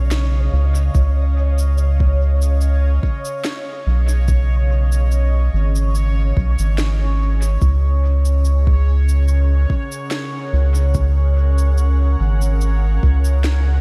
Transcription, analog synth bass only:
Already playing: B1
0.53 C#2
0.95 C#2
3.87 B1
5.53 G#1
6.37 B1
6.59 G#1
7.62 C#2
10.53 C#2
12.20 G#1
13.03 C#2

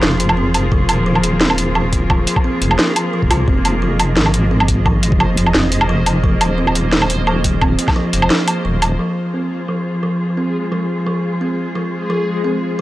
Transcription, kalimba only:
0.03 F3
0.37 C4
0.72 F3
1.06 F3
1.41 C4
1.75 F3
2.10 F3
2.44 C4
2.79 F3
3.13 F3
3.31 F4
3.48 C4
3.82 F3
4.17 F3
4.51 C4
4.86 F3
5.20 F3
5.55 C4
5.89 F3
6.24 F3
6.58 C4
6.92 F3
7.27 F3
7.61 C4
7.96 F3
8.30 F3
8.65 F3
8.99 F3
9.34 C4
9.68 F3
10.03 F3
10.37 C4
10.72 F3
11.07 F3
11.41 C4
11.75 F3
12.10 F3
12.44 C4

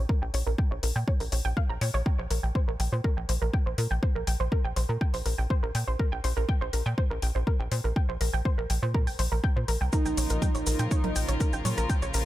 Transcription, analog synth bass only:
0.22 A#1
0.34 A#1
0.47 A#1
0.71 A#1
0.83 A#1
0.96 A#2
1.20 A#1
1.32 A#1
1.45 A#1
1.70 A#1
1.81 A#2
1.94 A#1
2.19 A#1
2.31 A#1
2.43 A#1
2.68 A#1
2.80 A#1
2.92 A#2
3.17 A#1
3.29 A#1
3.42 A#1
3.66 A#1
3.78 A#2
3.91 A#1
4.15 A#1
4.27 A#1
4.40 A#1
4.65 A#1
4.77 A#1
4.89 A#2
5.14 A#1
5.26 A#1
5.38 A#1
5.63 A#1
5.75 A#2
5.88 A#1
6.12 A#1
6.24 A#1
6.37 A#1
6.61 A#1
6.73 A#1
6.86 A#2
7.11 A#1
7.22 A#1
7.35 A#1
7.60 A#1
7.72 A#2
7.84 A#1
8.09 A#1
8.21 A#1
8.34 A#1
8.58 A#1
8.70 A#1
8.83 A#2
9.07 A#1
9.19 A#1
9.32 A#1
9.56 A#2
9.68 A#1
9.81 C2
10.06 A#1
10.17 A#1
10.30 A#1
10.55 A#1
10.67 A#1
10.79 A#2
11.04 A#1
11.16 A#1
11.29 A#1
11.53 A#1
11.65 A#2
11.78 A#1
12.02 A#1
12.14 A#1

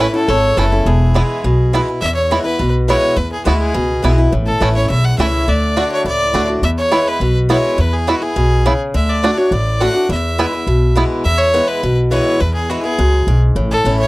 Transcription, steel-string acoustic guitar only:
Already playing: A2
0.00 E3 A3 C#4 E4
0.14 C#4 E4
0.28 E2
0.57 E3 A3 C#4 E4
0.72 C#4 E4
0.86 E2
1.14 E3 G#3 B3 E4
1.44 B2
1.73 E3 G#3 B3 E4
1.88 B3 E4
2.02 E2
2.31 E3 G#3 B3 E4
2.45 B3 E4
2.59 B2
2.88 E3 G#3 B3 E4
3.16 E2
3.45 E3 G#3 B3 E4
3.74 B2
4.02 E3 G#3 B3 E4
4.18 B3 E4
4.32 A2
4.60 E3 A3 C#4 E4
4.75 C#4 E4
4.90 E2
5.18 E3 A3 C#4 E4
5.48 D3
5.76 D3 A3 D4 F#4
6.06 A2
6.34 D3 A3 D4 F#4
6.48 D4 F#4
6.63 E2
6.91 E3 G#3 B3 E4
7.21 B2
7.49 E3 G#3 B3 E4
7.78 E2
8.07 E3 G#3 B3 E4
8.22 B3 E4
8.36 B2
8.66 C#3
8.94 D3
9.23 D3 A3 D4 F#4
9.37 D4 F#4
9.52 A2
9.80 D3 A3 D4 F#4
9.95 D4 F#4
10.09 E2
10.38 E3 G#3 B3 E4
10.53 B3 E4
10.67 B2
10.95 E3 G#3 B3 E4
11.25 E2
11.54 E3 G#3 B3 E4
11.83 B2
12.11 E3 G#3 B3 E4
12.40 E2
12.70 E3 G#3 B3 E4
12.84 B3 E4
12.99 F#2
13.28 G#2
13.56 A2
13.85 E3 A3 C#4 E4

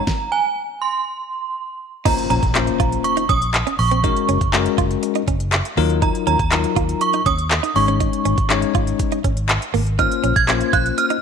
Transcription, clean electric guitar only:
2.05 D#4
2.30 C#4
2.43 muted clean electric guitar stroke
2.80 F4
3.05 muted clean electric guitar stroke
3.17 D#4
3.29 C#4
3.67 C#4
3.79 muted clean electric guitar stroke
3.91 C4
4.04 D#4
4.29 C#4
4.41 muted clean electric guitar stroke
4.78 F4
5.03 muted clean electric guitar stroke
5.16 D#4
5.28 C#4
5.78 A#3
6.02 D#4
6.27 C#4
6.39 muted clean electric guitar stroke
6.76 F4
7.01 muted clean electric guitar stroke
7.14 D#4
7.26 C#4
7.63 D#4
7.76 muted clean electric guitar stroke
7.88 C#4
8.00 D#4
8.25 C#4
8.38 muted clean electric guitar stroke
8.75 F4
9.00 muted clean electric guitar stroke
9.12 D#4
9.24 C#4
9.74 A#3
9.99 D#4
10.24 C#4
10.36 muted clean electric guitar stroke
10.73 F4
10.98 muted clean electric guitar stroke
11.10 D#4

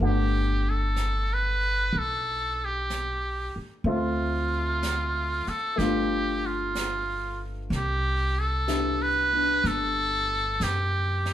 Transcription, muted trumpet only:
0.05 G4
0.70 A4
1.33 B4
1.98 A4
2.65 G4
3.90 F4
5.49 A4
5.78 G4
6.46 F4
7.76 G4
8.39 A4
9.02 B4
9.67 A4
10.63 G4

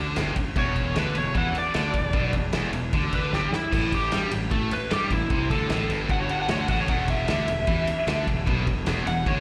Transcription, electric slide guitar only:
0.59 C#5
0.99 B4
1.18 C#5
1.37 F#5
1.58 D5
3.15 B4
3.35 G4
3.55 E4
3.95 G4
4.73 B4
4.93 G4
5.12 E4
5.51 A4
6.11 F#5
6.20 C#5
6.31 F#5
6.42 F#5
6.50 C#5
6.61 F#5
6.71 F#5
6.80 C#5
6.89 F#5
7.10 E5
9.07 F#5
9.28 C#5

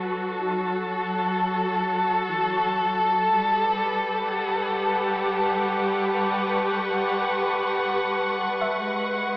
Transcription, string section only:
Already playing: F#3 F#4 A4
3.35 G3
3.52 G4
3.63 B4
4.21 F#5
8.81 G#3
9.32 G#4

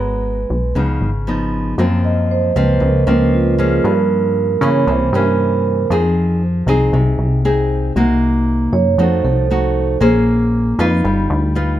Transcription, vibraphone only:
Already playing: B4
2.04 D#5
2.31 C5
2.56 B4
2.83 A#4
3.08 C#4
3.34 F4
3.58 G#4
3.85 A#4
4.62 C#5
4.89 C5
5.14 A#4
8.73 C#5
9.00 C5
9.24 A4

